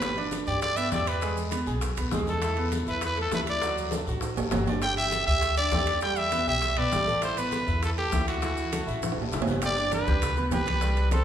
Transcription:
Already playing: upright bass G1, trumpet B4
0.01 grand piano G4 G5, high bongo, high conga, high timbale, long guiro, maracas
0.17 grand piano D4 D5, high bongo, high conga, high timbale
0.31 high bongo, high conga, high timbale, short guiro, maracas
0.47 upright bass G2, grand piano G4 G5, trumpet D5, high conga, short guiro, maracas
0.62 trumpet D5, high bongo, high conga, high timbale, maracas
0.77 grand piano B3 B4, trumpet E5, high bongo, high conga, high timbale, maracas
0.92 upright bass E2, grand piano G4 G5, trumpet D5, high bongo, low bongo, high conga, short guiro, maracas
1.06 trumpet B4, high bongo, high conga, high timbale, short guiro, maracas
1.22 grand piano G#3 G#4, high bongo, high conga, high timbale, long guiro, maracas
1.37 high bongo, high conga, maracas
1.51 grand piano B3 B4, high bongo, high conga, high timbale, short guiro, maracas
1.67 upright bass B1, grand piano G#4 G#5, high bongo, high conga, short guiro, maracas
1.81 high bongo, high conga, high timbale, long guiro, maracas
1.96 upright bass D2, grand piano B3 B4, high bongo, high conga, high timbale, maracas
2.11 upright bass E2, grand piano G#3 G#4, high bongo, low bongo, high conga, low timbale, short guiro, maracas
2.27 grand piano A3 A4, trumpet A4, high conga, short guiro, maracas
2.42 grand piano E4 E5, high bongo, high conga, high timbale, long guiro, maracas
2.57 grand piano B3 B4, high bongo, high conga, high timbale
2.72 high bongo, high conga, high timbale, short guiro, maracas
2.87 upright bass E2, grand piano E4 E5, trumpet B4, high conga, short guiro, maracas
3.01 high bongo, high conga, high timbale, long guiro, maracas
3.05 trumpet B4
3.17 grand piano A3 A4, high bongo, high conga, high timbale
3.22 trumpet A4
3.32 upright bass D2, grand piano E4 E5, trumpet B4, high bongo, low bongo, high conga, low timbale, short guiro, maracas
3.47 trumpet D5, high bongo, high conga, high timbale, short guiro, maracas
3.62 grand piano F#3 F#4, high bongo, high conga, high timbale, long guiro, maracas
3.77 high bongo, high conga, maracas
3.91 grand piano A3 A4, high bongo, high conga, high timbale, short guiro, maracas
4.06 upright bass A1, grand piano F#4 F#5, high bongo, high conga, short guiro, maracas
4.21 high bongo, high conga, high timbale, long guiro, maracas
4.37 upright bass A1, grand piano A3 A4, high bongo, high conga, low timbale, maracas
4.51 upright bass G1, grand piano F#3 F#4, high bongo, low bongo, high conga, low timbale, short guiro, maracas
4.66 grand piano D4 D5, high conga, low timbale, short guiro, maracas
4.82 grand piano G4 G5, trumpet G5, high bongo, high conga, high timbale, long guiro, maracas
4.97 grand piano G4 G5, trumpet E5, high bongo, high conga, high timbale
5.12 high bongo, high conga, high timbale, short guiro, maracas
5.27 upright bass D2, grand piano G4 G5, trumpet E5, high conga, short guiro, maracas
5.41 high bongo, high conga, high timbale, long guiro, maracas
5.57 grand piano D4 D5, trumpet D5, high bongo, high conga, high timbale, maracas
5.71 upright bass E2, grand piano G4 G5, high bongo, low bongo, high conga, low timbale, short guiro, maracas
5.86 high bongo, high conga, high timbale, short guiro, maracas
6.01 grand piano G3 G4, trumpet G5, high bongo, high conga, high timbale, long guiro, maracas
6.16 trumpet E5, high bongo, high conga, maracas
6.31 grand piano B3 B4, high bongo, high conga, high timbale, short guiro, maracas
6.47 upright bass B1, grand piano G4 G5, trumpet E5, high bongo, high conga, short guiro, maracas
6.62 high bongo, high conga, high timbale, long guiro, maracas
6.77 upright bass B1, grand piano B3 B4, trumpet D5, high bongo, high conga, high timbale
6.91 upright bass A1, grand piano G3 G4, high bongo, low bongo, high conga, short guiro, maracas
7.07 grand piano A3 A4, high conga, short guiro, maracas
7.22 grand piano E4 E5, trumpet C5, high bongo, high conga, high timbale, long guiro, maracas
7.37 grand piano B3 B4, trumpet B4, high bongo, high conga, high timbale, maracas
7.52 high bongo, high conga, high timbale, short guiro, maracas
7.67 upright bass E2, grand piano E4 E5, high conga, short guiro, maracas
7.82 trumpet A4, high bongo, high conga, high timbale, long guiro, maracas
7.97 grand piano A3 A4, trumpet G4, high bongo, high conga, high timbale
8.12 upright bass D2, grand piano E4 E5, high bongo, low bongo, high conga, low timbale, short guiro, maracas
8.28 trumpet F#4, high bongo, high conga, high timbale, short guiro, maracas
8.42 grand piano E3 E4, high bongo, high conga, high timbale, long guiro, maracas
8.57 high bongo, high conga, maracas
8.72 grand piano A3 A4, high bongo, high conga, high timbale, short guiro, maracas
8.87 upright bass A1, grand piano E4 E5, high bongo, high conga, short guiro, maracas
9.02 high bongo, high conga, high timbale, long guiro, maracas
9.12 high timbale
9.16 upright bass A1, grand piano A3 A4, high bongo
9.22 low timbale
9.31 upright bass G1, grand piano E3 E4, high bongo, low bongo, low conga, short guiro, maracas
9.42 low timbale
9.47 grand piano B3 B4, low conga, short guiro, maracas
9.51 low timbale
9.62 grand piano G4 G5 G6, trumpet D5, high bongo, high conga, high timbale, maracas
9.76 grand piano D4 D5 D6, high bongo, high conga, maracas
9.92 trumpet B4, high bongo, high conga, high timbale, low timbale, maracas
10.07 upright bass D2, grand piano G4 G5 G6, high conga, maracas
10.22 high bongo, high conga, low conga, high timbale, maracas
10.37 grand piano B3 B4 B5, high bongo, high conga, maracas
10.51 upright bass C2, grand piano G4 G5 G6, trumpet B4, high bongo, low bongo, high conga, high timbale, low timbale, maracas
10.66 high bongo, high conga, high timbale, maracas
10.81 grand piano G3 G4 G5, high bongo, high conga, maracas
10.97 high bongo, high conga, high timbale, maracas
11.11 grand piano C4 C5 C6, trumpet A4, high bongo, high conga, high timbale, low timbale, maracas

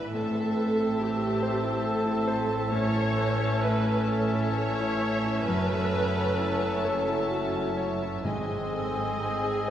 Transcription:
Already playing: bassoon E3, grand piano E4 B4 D5, viola section B4, violin section E5
0.11 double bass section A1, cello section A2, grand piano A2, french horn section A3 C4, clarinet C4, viola section A4, violin section C5 A5, oboe E5, flute A5
0.35 grand piano A4
0.56 grand piano B4
0.78 grand piano A4
0.99 grand piano E4, viola section G4
1.23 grand piano A4
1.43 grand piano C5
1.63 grand piano E4
1.84 grand piano A4, viola section A4
2.05 grand piano E4
2.28 grand piano C5
2.50 grand piano E4
2.72 grand piano A2, bassoon E3, clarinet C#4, french horn section C#4, viola section C#5, violin section C#5 E5
2.96 grand piano A4
3.17 grand piano B4
3.40 grand piano A4
3.62 grand piano E4, viola section B4
3.85 grand piano A4
4.08 viola section A4, grand piano C#5
4.33 grand piano E4
4.55 grand piano A4, viola section C#5
4.80 grand piano E4
5.02 grand piano C#5
5.26 grand piano E4
5.45 double bass section F#1, cello section F#2, grand piano F#2, bassoon F#3, french horn section A3, viola section B4, oboe E5, violin section A5, flute A5
5.72 grand piano A4
5.93 grand piano B4
6.15 grand piano A4
6.39 grand piano E4
6.62 grand piano A4
6.84 viola section A4, grand piano C#5
7.09 grand piano E4
7.30 viola section F#4, grand piano A4
7.56 grand piano E4
7.77 grand piano C#5
8.02 grand piano E4
8.23 double bass section G#1, grand piano G#2, timpani G#2, cello section G#2, french horn section G#3 C4, bassoon G#3, clarinet C4, violin section C5 D#5 G#5, oboe D#5, flute G#5
8.47 grand piano G#4
8.72 grand piano A4
8.95 grand piano G#4
9.20 grand piano D#4, viola section G#4
9.44 grand piano G#4

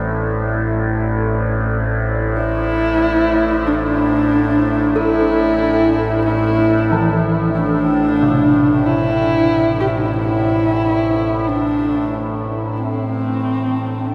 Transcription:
Already playing: synth drone A1 A2, bronze metallophone G3, analog synth pad A4 C5 D5 E5
2.36 horsehead fiddle E4
3.67 horsehead fiddle D4
3.73 horsehead fiddle D#4
3.81 horsehead fiddle D4
4.96 horsehead fiddle E4, bronze metallophone A4
6.25 horsehead fiddle E4
6.92 bronze metallophone E3
7.55 horsehead fiddle D4
8.23 bronze metallophone C3
8.86 horsehead fiddle E4
9.80 horsehead fiddle G4
9.87 horsehead fiddle E4
9.97 horsehead fiddle D#4
10.06 horsehead fiddle E4
10.16 horsehead fiddle E4
11.48 horsehead fiddle D4
12.77 horsehead fiddle C4
14.07 horsehead fiddle D4

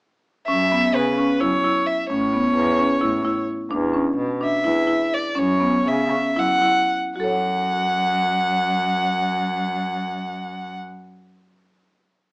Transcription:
0.47 cello F#2, marimba C#4, violin E5
0.72 marimba B3
0.95 cello C#3, violin B4
1.18 marimba C#4
1.39 cello F#2, marimba E4, violin C#5
1.64 marimba E4
1.86 violin E5
2.09 cello A2, marimba C#4, violin C#5
2.33 marimba B3
2.55 cello E2
2.79 marimba C#4
3.01 cello A2, marimba E4
3.25 marimba E4
3.71 cello E2, marimba D4
3.93 marimba C#4
4.17 cello B2
4.41 marimba D4, violin E5
4.64 cello E2, marimba E4
4.87 marimba E4
5.14 violin D5
5.35 cello F#2, marimba C#4, violin C#5
5.60 marimba B3
5.87 cello C#3, violin E5
6.11 marimba C#4
6.36 cello F#2, marimba E4, violin F#5
6.62 marimba E4
7.16 cello F#2, marimba F#4, violin F#5
7.20 marimba A4
7.24 marimba C#5 F#5

